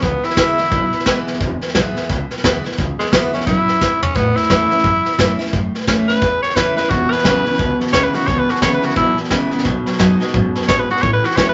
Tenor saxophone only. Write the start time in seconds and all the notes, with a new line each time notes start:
0.03 B3
0.24 E4
2.99 G#3
3.13 B3
3.34 C#4
3.47 E4
4.03 C#4
4.16 B3
4.36 E4
6.08 B4
6.42 C#5
6.56 B4
6.77 B4
6.90 F#4
7.12 B4
7.93 C#5
8.04 B4
8.15 F#4
8.27 C#5
8.39 B4
8.51 F#4
8.62 C#5
8.74 B4
8.85 F#4
8.97 E4
10.68 C#5
10.80 B4
10.91 F#4
11.02 C#5
11.13 B4
11.25 F#4
11.37 C#5
11.49 B4